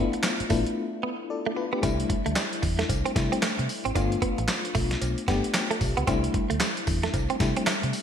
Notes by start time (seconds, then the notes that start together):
Already playing: A3 B3 D4 E4 F4
0.13 muted clean electric guitar stroke, closed hi-hat
0.23 snare, clap, closed hi-hat, tambourine, cowbell
0.40 muted fingered electric bass stroke, closed hi-hat
0.49 A1 A3 B3 D4 E4, kick, open hi-hat, tambourine
0.66 closed hi-hat
1.03 B3
1.30 A4 D5
1.46 A3
1.56 F4 B4, muted clean electric guitar stroke
1.73 B3 D4 G4
1.82 C2 G3 A3 C4 D4 E4, kick, closed hi-hat, tambourine, cowbell
2.00 closed hi-hat
2.10 muted clean electric guitar stroke, kick, closed hi-hat
2.26 D2 A3, closed hi-hat
2.36 G3, snare, clap, closed hi-hat, tambourine, cowbell
2.53 closed hi-hat
2.62 E2, muted clean electric guitar stroke, kick, open hi-hat, tambourine
2.79 A3, snare, closed hi-hat
2.89 C2, kick, closed hi-hat, tambourine, cowbell
3.06 C4, closed hi-hat
3.15 C3 G3 A3 D4 E4, muted clean electric guitar stroke, kick, snare, closed hi-hat, tambourine
3.32 C4, closed hi-hat
3.42 A3, snare, clap, closed hi-hat, tambourine, cowbell
3.59 C3, muted clean electric guitar stroke, closed hi-hat
3.69 open hi-hat, tambourine
3.85 G#1 C4, closed hi-hat
3.95 G1 A3 B3 D4 F4, kick, closed hi-hat, tambourine, cowbell
4.12 closed hi-hat
4.22 B3, kick, closed hi-hat
4.38 A1, muted clean electric guitar stroke, closed hi-hat
4.48 snare, clap, closed hi-hat, tambourine, cowbell
4.65 closed hi-hat
4.75 B1 A3, kick, open hi-hat, tambourine
4.91 snare, closed hi-hat
5.01 B1, closed hi-hat, tambourine, cowbell
5.18 closed hi-hat
5.28 G2 A3 B3 D4 G4, kick, snare, closed hi-hat, tambourine
5.44 closed hi-hat
5.54 snare, clap, closed hi-hat, tambourine, cowbell
5.71 A3, closed hi-hat
5.81 B1, muted clean electric guitar stroke, kick, open hi-hat, tambourine
5.97 C#2 B3, closed hi-hat
6.07 C2 G3 A3 C4 D4 E4, kick, closed hi-hat, tambourine, cowbell
6.24 closed hi-hat
6.34 muted clean electric guitar stroke, kick, closed hi-hat
6.50 D2 A3, closed hi-hat
6.60 G3, snare, clap, closed hi-hat, tambourine, cowbell
6.77 closed hi-hat
6.87 E2, muted clean electric guitar stroke, kick, open hi-hat, tambourine
7.03 A3, snare, closed hi-hat
7.14 C2, kick, closed hi-hat, tambourine, cowbell
7.30 C4, closed hi-hat
7.40 C3 G3 A3 D4 E4, muted clean electric guitar stroke, kick, snare, closed hi-hat, tambourine
7.56 C4, closed hi-hat
7.67 A3, snare, clap, closed hi-hat, tambourine, cowbell
7.83 C3, muted clean electric guitar stroke, closed hi-hat
7.93 open hi-hat, tambourine